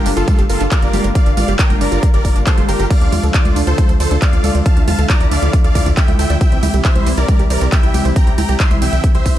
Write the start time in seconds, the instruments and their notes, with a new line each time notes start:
Already playing: analog synth pad D3 G3 A#3 F4
0.06 analog synth bass G1, synth arpeggio sound D4, open hi-hat, tambourine
0.17 analog synth bass G1, analog synth pad D3 G3 A#3 F4, synth arpeggio sound F4, supersaw synth F4 A4, closed hi-hat, tambourine
0.28 kick, closed hi-hat, tambourine, high conga
0.39 analog synth bass G1, synth arpeggio sound G4, closed hi-hat, tambourine
0.50 analog synth bass G1, analog synth pad D3 G3 A#3 F4, supersaw synth F4 A4, synth arpeggio sound A#4, open hi-hat, tambourine
0.60 analog synth bass G1, synth arpeggio sound D4, closed hi-hat, tambourine
0.71 analog synth pad D3 G3 A#3 F4, supersaw synth A#4 D5, kick, clap, closed hi-hat, tambourine
0.82 analog synth bass G1, synth arpeggio sound F4, closed hi-hat, tambourine
0.93 analog synth bass G1, analog synth pad D3 G3 A#3 F4, synth arpeggio sound G4, open hi-hat, tambourine, high conga
1.04 analog synth bass G1, synth arpeggio sound A#4, closed hi-hat, tambourine
1.15 analog synth pad D3 G3 A#3 F4, supersaw synth D5 F5, kick, closed hi-hat, tambourine
1.26 analog synth bass G1, synth arpeggio sound D4, closed hi-hat, tambourine
1.37 analog synth bass A1, synth arpeggio sound F4, supersaw synth D5 F5, open hi-hat, tambourine, high conga
1.48 analog synth bass G1, analog synth pad D3 G3 A#3 F4, synth arpeggio sound G4, closed hi-hat, tambourine
1.59 supersaw synth A#4 G5, kick, clap, closed hi-hat, tambourine
1.70 analog synth bass G1, analog synth pad D3 G3 A#3 F4, synth arpeggio sound A#4, closed hi-hat, tambourine, high conga
1.81 analog synth bass G1, synth arpeggio sound D4, supersaw synth A#4 D5, open hi-hat, tambourine
1.92 analog synth bass G1, analog synth pad D3 G3 A#3 F4, synth arpeggio sound F4, closed hi-hat, tambourine
2.03 kick, closed hi-hat, tambourine
2.14 analog synth bass G1, synth arpeggio sound G4, supersaw synth A#4 D5, closed hi-hat, tambourine
2.25 analog synth bass G1, analog synth pad D3 G3 A#3 F4, synth arpeggio sound A#4, kick, open hi-hat, tambourine
2.36 analog synth bass G1, synth arpeggio sound D4, closed hi-hat, tambourine
2.47 analog synth pad D3 G3 A#3 F4, supersaw synth A4 C5, kick, clap, closed hi-hat, tambourine
2.58 analog synth bass G1, synth arpeggio sound F4, closed hi-hat, tambourine, high conga
2.69 analog synth bass G1, analog synth pad D3 G3 A#3 F4, supersaw synth G4 A#4, synth arpeggio sound G4, open hi-hat, tambourine
2.80 analog synth bass G1, synth arpeggio sound A#4, closed hi-hat, tambourine
2.90 analog synth pad D3 F3 A3 F4, supersaw synth D5 F5, kick, closed hi-hat, crash, ride, tambourine
3.01 analog synth bass D2, synth arpeggio sound D4, closed hi-hat, tambourine
3.12 analog synth bass E2, synth arpeggio sound F4, open hi-hat, ride, tambourine, high conga
3.23 analog synth bass D2, analog synth pad D3 F3 A3 F4, synth arpeggio sound A4, closed hi-hat, tambourine
3.34 supersaw synth F4 D5, kick, clap, closed hi-hat, ride, tambourine
3.45 analog synth bass D2, analog synth pad D3 F3 A3 F4, synth arpeggio sound D5, closed hi-hat, tambourine, high conga
3.56 analog synth bass D2, synth arpeggio sound D4, open hi-hat, ride, tambourine
3.67 analog synth bass D2, analog synth pad D3 F3 A3 F4, synth arpeggio sound F4, supersaw synth A4 C5, closed hi-hat, tambourine
3.78 kick, closed hi-hat, ride, tambourine, high conga
3.89 analog synth bass D2, synth arpeggio sound A4, closed hi-hat, tambourine
4.00 analog synth bass D2, analog synth pad D3 F3 A3 F4, supersaw synth A4 C5, synth arpeggio sound D5, open hi-hat, ride, tambourine
4.11 analog synth bass D2, synth arpeggio sound D4, closed hi-hat, tambourine
4.22 analog synth pad D3 F3 A3 F4, supersaw synth D5 F5, kick, clap, closed hi-hat, ride, tambourine
4.33 analog synth bass D2, synth arpeggio sound F4, closed hi-hat, tambourine
4.44 analog synth bass D2, analog synth pad D3 F3 A3 F4, synth arpeggio sound A4, open hi-hat, ride, tambourine, high conga
4.55 analog synth bass D2, synth arpeggio sound D5, closed hi-hat, tambourine
4.66 analog synth pad D3 F3 A3 E4, supersaw synth F5 A5, kick, closed hi-hat, ride, tambourine
4.77 analog synth bass D2, synth arpeggio sound D4, closed hi-hat, tambourine
4.88 analog synth bass E2, synth arpeggio sound F4, supersaw synth F5 A5, open hi-hat, ride, tambourine, high conga
4.99 analog synth bass D2, analog synth pad D3 F3 A3 E4, synth arpeggio sound A4, closed hi-hat, tambourine
5.09 supersaw synth D5 A#5, kick, clap, closed hi-hat, ride, tambourine
5.20 analog synth bass D2, analog synth pad D3 F3 A3 E4, synth arpeggio sound D5, closed hi-hat, tambourine
5.31 analog synth bass D2, synth arpeggio sound D4, supersaw synth D5 F5, open hi-hat, ride, tambourine
5.42 analog synth bass D2, analog synth pad D3 F3 A3 E4, synth arpeggio sound F4, closed hi-hat, tambourine
5.53 kick, closed hi-hat, ride, tambourine
5.64 analog synth bass D2, synth arpeggio sound A4, supersaw synth D5 F5, closed hi-hat, tambourine
5.75 analog synth bass D2, analog synth pad D3 F3 A3 E4, synth arpeggio sound D5, kick, open hi-hat, ride, tambourine
5.86 analog synth bass D2, synth arpeggio sound D4, closed hi-hat, tambourine
5.97 analog synth pad D3 F3 A3 E4, supersaw synth E5 G5, kick, clap, closed hi-hat, ride, tambourine
6.08 analog synth bass D2, synth arpeggio sound F4, closed hi-hat, tambourine, high conga
6.19 analog synth bass D2, analog synth pad D3 F3 A3 E4, synth arpeggio sound A4, supersaw synth E5 G5, open hi-hat, ride, tambourine
6.30 analog synth bass D2, synth arpeggio sound D5, closed hi-hat, tambourine
6.41 analog synth pad C3 E3 G3 E4, supersaw synth E5 G5, kick, closed hi-hat, ride, tambourine
6.52 analog synth bass C2, synth arpeggio sound C4, closed hi-hat, tambourine
6.63 analog synth bass D2, synth arpeggio sound E4, open hi-hat, ride, tambourine, high conga
6.74 analog synth bass C2, analog synth pad C3 E3 G3 E4, synth arpeggio sound G4, closed hi-hat, tambourine
6.85 supersaw synth C5 E5, kick, clap, closed hi-hat, ride, tambourine
6.96 analog synth bass C2, analog synth pad C3 E3 G3 E4, synth arpeggio sound C5, closed hi-hat, tambourine, high conga
7.06 analog synth bass C2, synth arpeggio sound C4, open hi-hat, ride, tambourine
7.17 analog synth bass C2, analog synth pad C3 E3 G3 E4, synth arpeggio sound E4, supersaw synth A#4 D5, closed hi-hat, tambourine
7.28 kick, closed hi-hat, ride, tambourine, high conga
7.39 analog synth bass C2, synth arpeggio sound G4, closed hi-hat, tambourine
7.50 analog synth bass C2, analog synth pad C3 E3 G3 E4, supersaw synth A#4 D5, synth arpeggio sound C5, open hi-hat, ride, tambourine
7.61 analog synth bass C2, synth arpeggio sound C4, closed hi-hat, tambourine
7.72 analog synth pad C3 E3 G3 E4, supersaw synth E5 G5, kick, clap, closed hi-hat, ride, tambourine
7.83 analog synth bass C2, synth arpeggio sound E4, closed hi-hat, tambourine
7.94 analog synth bass C2, analog synth pad C3 E3 G3 E4, synth arpeggio sound G4, open hi-hat, ride, tambourine, high conga
8.05 analog synth bass C2, synth arpeggio sound C5, closed hi-hat, tambourine
8.16 analog synth pad C3 E3 G3 E4, supersaw synth G5 A#5, kick, closed hi-hat, ride, tambourine
8.27 analog synth bass C2, synth arpeggio sound C4, closed hi-hat, tambourine
8.38 analog synth bass D2, synth arpeggio sound E4, supersaw synth G5 A#5, open hi-hat, ride, tambourine, high conga
8.49 analog synth bass C2, analog synth pad C3 E3 G3 E4, synth arpeggio sound G4, closed hi-hat, tambourine
8.60 supersaw synth E5 C6, kick, clap, closed hi-hat, ride, tambourine
8.71 analog synth bass C2, analog synth pad C3 E3 G3 E4, synth arpeggio sound C5, closed hi-hat, tambourine, high conga
8.82 analog synth bass C2, synth arpeggio sound C4, supersaw synth E5 G5, open hi-hat, ride, tambourine
8.93 analog synth bass C2, analog synth pad C3 E3 G3 E4, synth arpeggio sound E4, closed hi-hat, tambourine
9.04 kick, closed hi-hat, ride, tambourine
9.15 analog synth bass C2, synth arpeggio sound G4, supersaw synth C5 E5, closed hi-hat, tambourine
9.25 analog synth bass C2, analog synth pad C3 E3 G3 E4, synth arpeggio sound C4, kick, open hi-hat, ride, tambourine